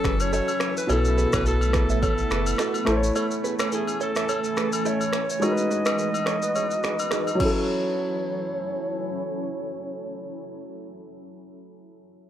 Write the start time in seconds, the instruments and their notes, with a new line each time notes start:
Already playing: grand piano F#3 C#4 E4 A4, ambient pad F#3 C#4 E4 A4, alto saxophone A4
0.04 sub bass F#1, clean electric guitar G#4 B4, finger snap, kick, cross-stick, shaker
0.20 alto saxophone C#5, high agogo, shaker
0.33 clean electric guitar F#4 A4, alto saxophone C#5, low woodblock, shaker
0.48 high agogo, shaker
0.60 finger snap, cross-stick, shaker
0.77 alto saxophone B4, shaker
0.87 sub bass B1, grand piano B2 B3 E4, ambient pad A3 B3, clean electric guitar A4 C#5, alto saxophone A4, high agogo, shaker
0.92 grand piano A4
1.05 shaker
1.18 clean electric guitar G#4 B4, shaker
1.33 sub bass B1, clean electric guitar A4 C#5, alto saxophone B4, finger snap, kick, cross-stick, high agogo, shaker
1.46 clean electric guitar F#4 A4, alto saxophone A4, shaker
1.61 high agogo, shaker
1.73 clean electric guitar G#4 B4, finger snap, kick, cross-stick, shaker
1.90 sub bass A1, alto saxophone A4, clean electric guitar C#5 E5, shaker
2.03 clean electric guitar A4 C#5, kick, high agogo, shaker
2.18 shaker
2.31 sub bass F#1, clean electric guitar G#4 B4, finger snap, cross-stick, shaker
2.47 high agogo, shaker
2.58 clean electric guitar F#4 A4, finger snap, cross-stick, low woodblock, shaker
2.74 high agogo, shaker
2.85 sub bass A1, ambient pad E3 A3 C#4, grand piano A3 E4 A4, finger snap, cross-stick, shaker
2.90 grand piano C5
2.96 grand piano C#5
3.04 shaker
3.16 clean electric guitar A4 C#5, high agogo, shaker
3.31 shaker
3.44 clean electric guitar G#4 B4, shaker
3.59 clean electric guitar A4 C#5, finger snap, cross-stick, high agogo, shaker
3.72 clean electric guitar E4 A4, alto saxophone G#4, shaker
3.87 high agogo, shaker
4.01 clean electric guitar A4 C#5, alto saxophone A4, shaker
4.16 clean electric guitar C#5 E5, finger snap, cross-stick, shaker
4.29 clean electric guitar A4 C#5, high agogo, shaker
4.44 shaker
4.57 clean electric guitar G#4 B4, finger snap, cross-stick, shaker
4.73 alto saxophone A4, high agogo, shaker
4.86 clean electric guitar E4 A4, alto saxophone C#5, low woodblock, shaker
5.01 high agogo, shaker
5.13 finger snap, cross-stick, shaker
5.30 alto saxophone C#5, shaker
5.40 grand piano G#3 D#4 F#4, ambient pad D#4 F#4 B4, clean electric guitar G#4 C#5, high agogo, shaker
5.44 grand piano A#4, alto saxophone D#5
5.51 grand piano B4
5.57 shaker
5.71 clean electric guitar G#4 B4, shaker
5.86 clean electric guitar B4 D#5, finger snap, cross-stick, high agogo, shaker
5.99 clean electric guitar G#4 B4, shaker
6.14 high agogo, shaker
6.26 clean electric guitar A4 C#5, finger snap, cross-stick, shaker
6.42 clean electric guitar B4 D#5, shaker
6.55 clean electric guitar G#4 C#5, high agogo, shaker
6.71 shaker
6.84 clean electric guitar G#4 B4, finger snap, cross-stick, shaker
6.99 high agogo, shaker
7.11 clean electric guitar D#4 G#4, finger snap, cross-stick, low woodblock, shaker
7.27 high agogo, shaker
7.35 grand piano F#3 C#4
7.40 ambient pad F#3 C#4 E4 A4, clean electric guitar C#4, grand piano E4, alto saxophone C#5, kick, crash, high agogo
7.45 grand piano A4